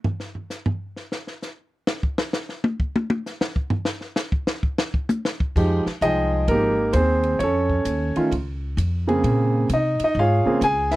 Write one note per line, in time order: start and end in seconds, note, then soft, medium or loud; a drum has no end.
0.04 floor tom loud
0.20 snare soft
0.35 floor tom soft
0.50 snare soft
0.50 hi-hat pedal medium
0.66 floor tom loud
0.96 snare soft
1.12 snare medium
1.27 snare soft
1.42 snare soft
1.42 hi-hat pedal medium
1.87 snare loud
2.03 kick medium
2.18 snare loud
2.33 snare loud
2.33 hi-hat pedal medium
2.49 snare soft
2.64 high tom loud
2.80 kick medium
2.96 high tom loud
3.10 high tom loud
3.26 snare medium
3.26 hi-hat pedal medium
3.41 snare loud
3.56 kick medium
3.70 floor tom loud
3.85 snare loud
4.01 snare soft
4.16 snare loud
4.16 hi-hat pedal medium
4.32 kick medium
4.47 snare loud
4.63 kick medium
4.78 snare loud
4.94 kick medium
5.09 hi-hat pedal medium
5.09 high tom loud
5.25 snare loud
5.40 kick medium
5.56 5.84 F2 medium
5.56 5.83 F3 medium
5.56 5.83 G#3 medium
5.56 5.84 D#4 medium
5.56 5.84 G4 medium
5.56 kick medium
5.56 crash medium
5.86 muted upright bass stroke soft
5.86 snare soft
6.01 6.46 C2 medium
6.01 6.72 F3 medium
6.01 6.72 G#3 medium
6.01 6.50 D#4 medium
6.01 6.46 G#4 medium
6.01 6.45 D#5 loud
6.01 6.73 G5 medium
6.01 kick soft
6.01 hi-hat pedal medium
6.01 ride medium
6.48 6.92 G#1 medium
6.48 6.93 A#3 medium
6.48 6.92 D#4 medium
6.48 6.92 G4 medium
6.48 6.91 A#4 medium
6.48 kick soft
6.48 ride medium
6.93 7.38 D#2 medium
6.93 7.38 C4 medium
6.93 7.38 G#4 medium
6.93 7.36 C5 loud
6.93 kick soft
6.93 hi-hat pedal soft
6.93 ride medium
7.23 ride soft
7.39 7.84 F2 medium
7.39 8.28 C#5 medium
7.39 kick soft
7.39 ride medium
7.43 8.15 C#4 medium
7.43 8.30 A4 medium
7.69 kick soft
7.85 8.13 D#2 medium
7.85 kick soft
7.85 hi-hat pedal medium
7.85 ride medium
8.16 8.31 D#3 medium
8.16 8.31 A3 medium
8.16 8.31 C#4 medium
8.16 8.31 F4 medium
8.16 muted upright bass stroke soft
8.16 ride soft
8.31 8.76 C#2 medium
8.31 kick soft
8.31 ride medium
8.77 9.22 F2 medium
8.77 kick soft
8.77 hi-hat pedal medium
8.77 ride medium
9.07 9.67 C#3 medium
9.07 9.67 A#3 medium
9.07 9.67 C4 medium
9.07 9.67 G#4 medium
9.07 ride soft
9.24 9.68 A#2 medium
9.24 kick soft
9.24 ride medium
9.69 9.98 C3 medium
9.69 10.00 D#4 medium
9.69 kick soft
9.69 hi-hat pedal medium
9.69 ride medium
9.74 10.03 D#5 medium
10.00 muted upright bass stroke soft
10.00 ride medium
10.04 10.17 D#4 medium
10.04 10.19 D#5 medium
10.15 10.43 G#2 medium
10.15 kick soft
10.19 10.61 F4 medium
10.19 10.45 G#4 medium
10.19 10.61 C#5 medium
10.19 10.60 F5 loud
10.46 10.60 C#3 medium
10.46 10.61 A#3 medium
10.46 10.61 C4 medium
10.46 10.61 G#4 medium
10.46 muted upright bass stroke soft
10.61 10.96 C#2 medium
10.61 10.91 G#4 medium
10.61 10.94 G#5 loud
10.61 kick soft
10.61 hi-hat pedal medium
10.61 ride medium
10.91 10.96 E4 medium
10.91 10.96 B4 medium
10.91 10.96 E5 medium
10.91 snare soft
10.91 ride soft